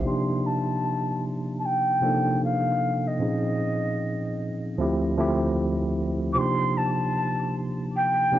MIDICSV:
0, 0, Header, 1, 3, 480
1, 0, Start_track
1, 0, Tempo, 789474
1, 29, Time_signature, 4, 2, 24, 8
1, 5101, End_track
2, 0, Start_track
2, 0, Title_t, "Flute"
2, 0, Program_c, 0, 73
2, 38, Note_on_c, 0, 84, 104
2, 279, Note_on_c, 0, 81, 90
2, 288, Note_off_c, 0, 84, 0
2, 754, Note_off_c, 0, 81, 0
2, 966, Note_on_c, 0, 81, 65
2, 1005, Note_on_c, 0, 79, 99
2, 1014, Note_off_c, 0, 81, 0
2, 1476, Note_off_c, 0, 79, 0
2, 1485, Note_on_c, 0, 77, 104
2, 1867, Note_on_c, 0, 75, 77
2, 1876, Note_off_c, 0, 77, 0
2, 2818, Note_off_c, 0, 75, 0
2, 3847, Note_on_c, 0, 86, 73
2, 3878, Note_on_c, 0, 84, 100
2, 3888, Note_off_c, 0, 86, 0
2, 4116, Note_on_c, 0, 81, 81
2, 4126, Note_off_c, 0, 84, 0
2, 4592, Note_off_c, 0, 81, 0
2, 4839, Note_on_c, 0, 79, 102
2, 5101, Note_off_c, 0, 79, 0
2, 5101, End_track
3, 0, Start_track
3, 0, Title_t, "Tine electric piano"
3, 0, Program_c, 1, 4
3, 0, Control_c, 1, 64, 127
3, 0, Note_on_c, 1, 76, 71
3, 22, Note_on_c, 1, 48, 64
3, 27, Note_on_c, 1, 53, 57
3, 32, Note_on_c, 1, 58, 60
3, 37, Control_c, 1, 64, 0
3, 37, Note_on_c, 1, 62, 62
3, 41, Note_on_c, 1, 63, 53
3, 44, Note_on_c, 1, 67, 71
3, 158, Note_off_c, 1, 76, 0
3, 162, Control_c, 1, 64, 127
3, 801, Note_off_c, 1, 48, 0
3, 803, Note_off_c, 1, 53, 0
3, 806, Note_off_c, 1, 58, 0
3, 808, Note_off_c, 1, 62, 0
3, 810, Note_off_c, 1, 63, 0
3, 812, Note_off_c, 1, 67, 0
3, 1224, Note_on_c, 1, 48, 68
3, 1228, Note_on_c, 1, 53, 70
3, 1233, Note_on_c, 1, 58, 70
3, 1236, Note_on_c, 1, 62, 67
3, 1239, Note_on_c, 1, 63, 66
3, 1244, Note_on_c, 1, 69, 78
3, 1818, Note_off_c, 1, 48, 0
3, 1820, Note_off_c, 1, 53, 0
3, 1823, Note_off_c, 1, 58, 0
3, 1824, Note_off_c, 1, 62, 0
3, 1826, Note_off_c, 1, 63, 0
3, 1828, Note_off_c, 1, 69, 0
3, 1938, Note_on_c, 1, 46, 61
3, 1941, Note_on_c, 1, 53, 55
3, 1946, Note_on_c, 1, 60, 56
3, 1951, Note_on_c, 1, 61, 53
3, 1954, Note_on_c, 1, 63, 62
3, 1955, Control_c, 1, 64, 0
3, 1958, Note_on_c, 1, 68, 65
3, 2059, Control_c, 1, 64, 127
3, 2719, Note_off_c, 1, 46, 0
3, 2720, Note_off_c, 1, 53, 0
3, 2723, Note_off_c, 1, 60, 0
3, 2725, Note_off_c, 1, 61, 0
3, 2727, Note_off_c, 1, 63, 0
3, 2729, Note_off_c, 1, 68, 0
3, 2904, Note_on_c, 1, 38, 86
3, 2908, Note_on_c, 1, 53, 74
3, 2913, Note_on_c, 1, 57, 77
3, 2916, Control_c, 1, 64, 0
3, 2917, Note_on_c, 1, 60, 64
3, 2921, Note_on_c, 1, 64, 77
3, 2926, Note_on_c, 1, 67, 81
3, 3010, Control_c, 1, 64, 127
3, 3106, Note_off_c, 1, 38, 0
3, 3108, Note_off_c, 1, 53, 0
3, 3111, Note_off_c, 1, 57, 0
3, 3113, Note_off_c, 1, 60, 0
3, 3115, Note_off_c, 1, 64, 0
3, 3117, Note_off_c, 1, 67, 0
3, 3144, Note_on_c, 1, 38, 83
3, 3147, Note_on_c, 1, 53, 80
3, 3150, Note_on_c, 1, 57, 84
3, 3155, Note_on_c, 1, 60, 71
3, 3160, Note_on_c, 1, 64, 72
3, 3165, Note_on_c, 1, 67, 87
3, 3738, Note_off_c, 1, 38, 0
3, 3740, Note_off_c, 1, 53, 0
3, 3741, Note_off_c, 1, 57, 0
3, 3744, Note_off_c, 1, 60, 0
3, 3746, Note_off_c, 1, 64, 0
3, 3749, Note_off_c, 1, 67, 0
3, 3858, Note_on_c, 1, 48, 68
3, 3863, Note_on_c, 1, 53, 64
3, 3866, Note_on_c, 1, 58, 61
3, 3870, Note_on_c, 1, 62, 52
3, 3873, Note_on_c, 1, 63, 55
3, 3875, Control_c, 1, 64, 0
3, 3879, Note_on_c, 1, 67, 73
3, 3971, Control_c, 1, 64, 127
3, 4639, Note_off_c, 1, 48, 0
3, 4641, Note_off_c, 1, 53, 0
3, 4643, Note_off_c, 1, 58, 0
3, 4645, Note_off_c, 1, 62, 0
3, 4647, Note_off_c, 1, 63, 0
3, 4649, Note_off_c, 1, 67, 0
3, 5058, Note_on_c, 1, 48, 73
3, 5063, Note_on_c, 1, 53, 68
3, 5065, Note_on_c, 1, 58, 60
3, 5069, Note_on_c, 1, 62, 77
3, 5076, Note_on_c, 1, 63, 70
3, 5079, Note_on_c, 1, 67, 71
3, 5101, Note_off_c, 1, 48, 0
3, 5101, Note_off_c, 1, 53, 0
3, 5101, Note_off_c, 1, 58, 0
3, 5101, Note_off_c, 1, 62, 0
3, 5101, Note_off_c, 1, 63, 0
3, 5101, Note_off_c, 1, 67, 0
3, 5101, End_track
0, 0, End_of_file